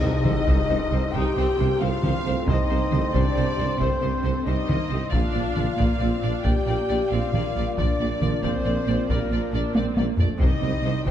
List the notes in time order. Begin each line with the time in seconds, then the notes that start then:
Already playing: G2 C3 C4 D#4 C5 D#5, sub drop
0.02 C2 C3 C5
0.24 C2 C3 C5, taiko mid
0.47 C2 C3 C5, taiko
0.69 C2 C3 C5
0.91 C2 C3 C5
1.12 C2 C3 D#4 C5 G5, taiko
1.16 G4
1.36 C2 C3 C4 C5
1.59 C2 C3 A#3 C5
1.79 C2 C3 A3 F4 C5 F5
2.03 C2 C3 G3 C5, taiko mid
2.25 C2 C3 A3 C5
2.47 C2 C3 G3 D#4 C5 D#5, taiko
2.70 C2 C3 A#3 C5
2.91 C2 C3 A3 C5, taiko mid
3.13 C2 C3 G3 D4 C5 D5, taiko
3.36 C2 C3 C5
3.58 C2 C3 C5
3.79 C2 C3 A3 C4 C5, taiko
4.02 C2 C3 G3 C5
4.24 C2 C3 A3 C5
4.44 C2 C3 G3 D#4 C5 D#5
4.68 C2 C3 A#3 C5, taiko mid
4.89 C2 C3 C4 C5
5.10 A#1 A#2 D4 F4 D5 F5, taiko
5.14 A#3
5.32 A#1 A#2 D5
5.55 A#1 A#2 D5, taiko mid
5.77 A#1 A#2 A#3 D5, taiko
6.00 A#1 A#2 C4 D5
6.22 A#1 A#2 D4 D5
6.44 A#1 A#2 A#3 G4 D5 G5, taiko
6.66 A#1 A#2 D5
6.89 A#1 A#2 D5
7.11 A#1 A#2 C4 F4 D5 F5
7.32 A#1 A#2 A#3 D5, taiko mid
7.54 A#1 A#2 G3 D5
7.76 A#1 A#2 F3 D4 D5, taiko
7.99 A#1 A#2 G3 D5
8.21 A#1 A#2 F3 D5, taiko mid
8.42 A#1 A#2 F3 C4 C5 D5, taiko
8.64 A#1 A#2 D5
8.87 A#1 A#2 D5
9.09 A#1 A#2 G3 A#3 A#4 D5, taiko
9.31 A#1 A#2 F3 D5
9.53 A#1 A#2 D4 D5
9.74 A#1 A#2 C4 D5, taiko high
9.96 A#1 A#2 A#3 D5, taiko high
10.18 A#1 A#2 A3 D5, taiko low
10.39 C2 C3 G3 D#4 C5 D#5, taiko
10.62 C2 C3 C5
10.83 C2 C3 C5
11.06 C2 C3 A#3 G4 C5 G5, taiko